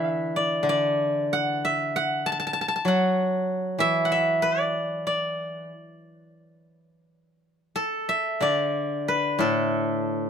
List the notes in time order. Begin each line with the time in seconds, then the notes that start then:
Already playing: D3 E3 A4 D5 E5 F#5 A5
0.36 D5
0.63 D3
0.69 D5
1.33 F#5
1.65 E5
1.96 F#5
2.26 A5
2.32 A5
2.40 A5
2.47 A5
2.53 A5
2.61 A5
2.68 A5
2.76 A5
2.85 F#3 F#5
3.79 E3 E5
4.05 F#5
4.12 E5
4.42 D5
5.07 D5
7.76 A4
8.09 E5
8.41 D3 D5
9.08 B4
9.39 A2 A4